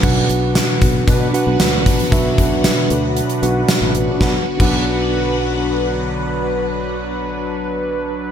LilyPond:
<<
  \new Staff \with { instrumentName = "Tine electric piano" } { \time 4/4 \key b \minor \tempo 4 = 115 <b, d' fis' b' fis''>4. r4 <d' fis' b' fis''>4 r8 | <b, d' fis' b' e''>4. r4 <d' fis' b' fis''>4 r8 | <b,, d' fis' b' fis''>16 r8 <b,, d' fis' b' fis''>2.~ <b,, d' fis' b' fis''>16~ | <b,, d' fis' b' fis''>1 | }
  \new Staff \with { instrumentName = "Analog polysynth" } { \time 4/4 \key b \minor r2 <fis d' b'>2~ | <fis d' b'>1 | <fis d' b'>16 r8 <fis d' b'>2.~ <fis d' b'>16~ | <fis d' b'>1 | }
  \new Staff \with { instrumentName = "String machine" } { \time 4/4 \key b \minor <d b fis'>1~ | <d b fis'>1 | <d b fis'>1~ | <d b fis'>1 | }
  \new Staff \with { instrumentName = "Fretless electric bass" } { \clef bass \time 4/4 \key b \minor b,,8 b,,8. r16 b,,8 b,8 r16 b,,16 d,8 ais,,8 | b,,8 b,,8. r16 d,8. r16 b,,8 r16 a,,16 a,,16 ais,,16 | b,,16 r8 b,,2.~ b,,16~ | b,,1 | }
  \new DrumStaff \with { instrumentName = "Drums" } \drummode { \time 4/4 <cymc bd>8 hh8 <hh sn tamb>8 <hh bd>8 <hh bd>8 hh8 <hh sn tamb>8 <hh bd>16 hh16 | <hh bd>8 <hh bd>8 <hh sn tamb>8 hh8 hh16 hh16 hh8 <hh sn tamb>8 hh8 | <bd sn>8. <cymc bd>16 r4 r4 r4 | r4 r4 r4 r4 | }
>>